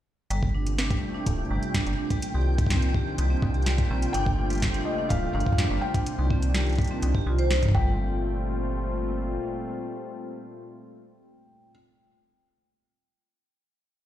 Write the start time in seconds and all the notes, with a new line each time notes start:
0.30 G1 C3 G3 A3 A#3 F4 G5, closed hi-hat
0.43 kick
0.55 D4
0.67 closed hi-hat
0.78 D4, snare, closed hi-hat
0.90 G3, kick, closed hi-hat
1.14 D4
1.26 D1, kick, closed hi-hat
1.39 D4
1.50 G1 G3
1.63 closed hi-hat
1.74 D4, kick, snare, closed hi-hat
1.87 G1, closed hi-hat
1.98 D4
2.10 G3, kick, closed hi-hat
2.22 C3 D#3 D4, closed hi-hat
2.34 C2 G4
2.58 G3, kick, closed hi-hat
2.66 C4, kick, snare, closed hi-hat
2.74 kick
2.82 closed hi-hat
2.94 G4, kick
3.18 C2 G3, closed hi-hat
3.30 C4
3.42 C2, kick
3.54 G4, closed hi-hat
3.62 snare, closed hi-hat
3.66 closed hi-hat
3.70 closed hi-hat
3.78 G3, kick, closed hi-hat
3.90 A#1 C4
4.02 closed hi-hat
4.13 G1 G3 A3 D4 G5, closed hi-hat
4.26 kick
4.39 D4
4.50 G3, closed hi-hat
4.53 closed hi-hat
4.55 closed hi-hat
4.58 closed hi-hat
4.60 snare, closed hi-hat
4.62 kick, closed hi-hat
4.74 D4, closed hi-hat
4.85 D#5
4.98 D4
5.09 D1 G3 F5, kick, closed hi-hat
5.33 G1 D4 F5
5.40 closed hi-hat
5.46 kick
5.52 kick
5.58 D4, kick, snare, closed hi-hat
5.64 kick
5.70 G1 G3
5.81 G5
5.94 D4, kick, closed hi-hat
6.06 D#3 D4, closed hi-hat
6.18 C2 G3
6.30 C4, kick
6.42 closed hi-hat
6.54 G4, snare, closed hi-hat
6.67 closed hi-hat
6.69 closed hi-hat
6.73 closed hi-hat
6.75 closed hi-hat
6.78 G3, kick, closed hi-hat
6.82 closed hi-hat
6.84 closed hi-hat
6.87 C4, closed hi-hat
7.02 C2, closed hi-hat
7.15 G4, kick
7.26 C2 F4
7.39 C5, closed hi-hat
7.51 D#4, snare, closed hi-hat
7.63 G1, kick, closed hi-hat
7.66 kick
7.69 kick
7.72 A#2 G3 A3 C4 F4 G5, kick
7.75 G1 G3, kick